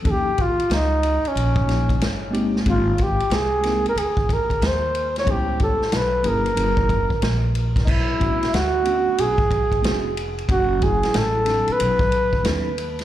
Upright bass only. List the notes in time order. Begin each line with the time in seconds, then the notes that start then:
0.05 D#2
0.59 muted upright bass stroke
0.70 C#2
1.24 muted upright bass stroke
1.35 A#1
2.00 G1
2.66 G#1
3.19 muted upright bass stroke
3.30 C2
3.85 muted upright bass stroke
3.96 D2
4.50 muted upright bass stroke
4.62 D#2
5.27 C#2
5.81 muted upright bass stroke
5.92 B1
6.25 G1
6.57 F#1
7.10 muted upright bass stroke
7.22 A#1
7.87 B1
8.42 muted upright bass stroke
8.53 D2
9.07 muted upright bass stroke
9.19 B1
9.84 F1
10.49 F#1
11.04 muted upright bass stroke
11.14 A1
11.69 muted upright bass stroke
11.80 B1
12.33 muted upright bass stroke
12.45 D#2